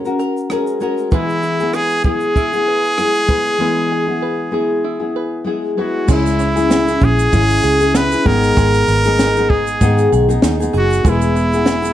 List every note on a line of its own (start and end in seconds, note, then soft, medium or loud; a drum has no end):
0.00 1.12 A#3 medium
0.00 1.19 C#4 medium
0.00 0.22 G#4 soft
0.05 0.50 C#4 soft
0.05 0.50 F#4 soft
0.05 0.50 A#4 soft
0.05 shaker soft
0.19 0.81 A#4 medium
0.19 shaker soft
0.37 shaker soft
0.49 0.79 G#3 medium
0.49 0.80 C#4 medium
0.49 0.80 F#4 medium
0.49 1.43 G#4 medium
0.49 0.81 A#4 medium
0.49 cross-stick loud
0.49 shaker medium
0.67 shaker soft
0.80 1.11 G#3 medium
0.80 1.12 C#4 medium
0.80 1.13 F#4 medium
0.80 1.12 A#4 medium
0.80 1.13 A#4 medium
0.80 shaker soft
0.98 shaker soft
1.11 1.60 E3 medium
1.11 1.60 G#3 medium
1.11 3.59 G#3 medium
1.11 1.61 B3 medium
1.11 1.60 E4 medium
1.11 1.76 E4 medium
1.11 1.59 G#4 medium
1.11 1.73 B4 medium
1.11 kick loud
1.11 shaker medium
1.29 shaker soft
1.43 2.05 G#4 medium
1.43 shaker soft
1.60 2.04 B3 soft
1.60 2.05 E4 soft
1.60 2.05 G#4 soft
1.60 shaker soft
1.73 2.04 G#4 medium
1.73 2.67 B4 medium
1.73 cross-stick medium
1.73 shaker medium
1.90 shaker soft
2.03 2.54 G#3 medium
2.03 2.54 B3 medium
2.03 2.53 E4 medium
2.03 5.43 G#4 loud
2.03 2.98 G#4 medium
2.03 2.52 G#4 medium
2.03 kick medium
2.03 shaker soft
2.20 shaker soft
2.36 4.83 E4 medium
2.36 kick medium
2.36 shaker medium
2.53 2.97 B3 soft
2.53 2.98 E4 soft
2.53 2.98 G#4 soft
2.53 shaker soft
2.68 3.28 B4 medium
2.84 shaker soft
2.98 3.27 G#3 medium
2.98 3.27 B3 medium
2.98 3.28 E4 medium
2.98 3.92 G#4 medium
2.98 3.28 G#4 medium
2.98 cross-stick loud
2.98 shaker medium
3.15 shaker soft
3.28 3.59 G#3 soft
3.28 3.59 B3 medium
3.28 3.59 E4 medium
3.28 3.59 G#4 medium
3.28 3.60 B4 medium
3.28 kick medium
3.28 shaker soft
3.45 shaker soft
3.59 4.08 E3 medium
3.59 4.08 G#3 medium
3.59 6.07 G#3 medium
3.59 4.08 B3 medium
3.59 4.07 E4 medium
3.59 4.05 G#4 medium
3.59 3.91 B4 medium
3.92 4.22 G#4 medium
4.07 4.51 B3 soft
4.07 4.51 E4 soft
4.07 4.52 G#4 medium
4.22 5.15 B4 medium
4.51 5.01 G#3 medium
4.51 5.01 B3 medium
4.51 4.99 E4 medium
4.51 4.98 G#4 medium
4.51 5.46 G#4 medium
4.84 6.24 E4 medium
5.00 5.44 B3 soft
5.00 5.45 E4 soft
5.00 5.46 G#4 soft
5.16 5.77 B4 medium
5.44 5.76 G#3 medium
5.44 5.76 B3 medium
5.44 5.77 E4 medium
5.44 6.09 G#4 medium
5.44 5.77 G#4 medium
5.77 6.06 G#3 soft
5.77 6.08 B3 medium
5.77 6.08 E4 medium
5.77 6.14 F#4 medium
5.77 6.08 G#4 medium
5.77 6.08 B4 medium
6.07 6.98 C#2 loud
6.07 6.56 G#3 medium
6.07 8.21 G#3 medium
6.07 8.24 G#3 medium
6.07 6.57 C#4 medium
6.07 8.22 C#4 medium
6.07 6.56 E4 medium
6.07 8.22 E4 medium
6.07 7.62 G#4 medium
6.07 6.55 G#4 medium
6.07 8.23 C#5 medium
6.07 kick loud
6.07 crash loud
6.07 shaker medium
6.12 7.06 E4 medium
6.26 shaker soft
6.39 7.00 C#4 medium
6.39 shaker soft
6.56 6.89 C#4 soft
6.56 6.88 E4 soft
6.56 6.87 G#4 medium
6.56 shaker soft
6.56 shaker medium
6.70 7.31 E4 medium
6.70 snare loud
6.70 shaker medium
6.87 7.32 C#4 soft
6.87 7.32 E4 soft
6.87 7.33 G#4 medium
6.87 shaker medium
7.01 7.27 A#1 medium
7.01 8.25 C#4 medium
7.01 7.98 G#4 loud
7.01 kick medium
7.01 shaker medium
7.18 shaker soft
7.18 shaker medium
7.33 7.59 G#1 loud
7.33 7.81 C#3 medium
7.33 7.81 G#3 medium
7.33 7.81 C#4 medium
7.33 7.93 E4 medium
7.33 7.80 E4 medium
7.33 7.79 G#4 medium
7.33 kick medium
7.33 shaker medium
7.50 shaker medium
7.63 8.15 C#2 medium
7.63 8.57 G#4 medium
7.63 shaker medium
7.81 8.13 C#4 soft
7.81 8.12 E4 medium
7.81 8.11 G#4 medium
7.81 shaker soft
7.95 8.33 E4 medium
7.95 8.28 B4 loud
7.95 snare loud
7.95 shaker medium
8.12 8.26 C#4 soft
8.12 8.26 E4 soft
8.12 8.25 G#4 medium
8.12 shaker medium
8.24 8.51 G#1 medium
8.24 9.04 G#2 medium
8.24 9.04 D#3 medium
8.24 10.68 G#3 medium
8.24 9.07 G#3 medium
8.24 8.57 G#3 medium
8.24 10.69 B3 medium
8.24 9.07 B3 medium
8.24 9.05 D#4 medium
8.24 10.70 D#4 medium
8.24 9.05 G#4 medium
8.24 10.70 G#4 medium
8.24 9.51 A#4 loud
8.24 kick medium
8.24 snare soft
8.24 shaker medium
8.43 shaker soft
8.57 8.82 G#1 loud
8.57 11.03 G#3 medium
8.57 10.11 G#4 medium
8.57 kick loud
8.57 shaker medium
8.74 shaker soft
8.88 9.77 G#1 medium
8.88 9.19 B3 medium
8.88 shaker soft
8.88 shaker medium
9.05 9.37 G#3 soft
9.05 9.37 B3 medium
9.05 9.36 D#4 medium
9.05 9.36 G#4 medium
9.05 shaker soft
9.05 shaker medium
9.19 9.50 D#4 medium
9.19 snare loud
9.19 shaker medium
9.36 9.81 G#3 soft
9.36 9.81 B3 soft
9.36 9.81 D#4 medium
9.36 9.81 G#4 medium
9.36 shaker medium
9.36 shaker soft
9.50 10.73 B3 medium
9.50 10.12 G#4 loud
9.50 kick medium
9.67 shaker medium
9.67 shaker soft
9.81 10.29 G#2 medium
9.81 10.06 G#2 loud
9.81 10.29 D#3 medium
9.81 10.29 G#3 medium
9.81 10.29 B3 medium
9.81 10.42 D#4 medium
9.81 10.28 D#4 medium
9.81 10.27 G#4 medium
9.81 kick medium
9.81 shaker medium
9.98 shaker soft
10.12 10.38 B1 medium
10.12 10.73 G#4 medium
10.12 shaker medium
10.29 10.61 G#3 soft
10.29 10.60 B3 medium
10.29 10.60 D#4 medium
10.29 10.59 G#4 medium
10.29 shaker medium
10.29 shaker soft
10.42 10.68 D#2 medium
10.42 11.11 D#4 medium
10.42 snare loud
10.42 shaker medium
10.60 11.05 D#4 soft
10.60 11.05 G#4 medium
10.60 shaker medium
10.62 11.04 G#3 soft
10.62 11.05 B3 soft
10.62 shaker medium
10.73 10.99 F#1 medium
10.73 11.05 G#4 medium
10.73 shaker medium
10.78 11.11 F#4 medium
10.90 shaker soft
10.93 shaker soft
11.03 11.93 E1 loud
11.03 11.93 G#3 medium
11.03 11.53 G#3 medium
11.03 11.93 B3 medium
11.03 11.53 B3 medium
11.03 11.93 E4 medium
11.03 11.54 E4 medium
11.03 11.93 G#4 medium
11.03 11.93 B4 medium
11.03 kick loud
11.03 shaker medium
11.08 11.93 E4 medium
11.08 11.53 G#4 medium
11.21 shaker soft
11.35 11.93 B3 medium
11.35 shaker soft
11.53 11.83 B3 soft
11.53 11.82 E4 medium
11.53 11.81 G#4 medium
11.53 shaker medium
11.53 shaker soft
11.66 11.93 E4 medium
11.66 snare loud
11.66 shaker medium
11.82 11.93 B3 soft
11.82 11.93 E4 soft
11.82 11.93 G#4 medium
11.82 shaker medium
11.85 shaker medium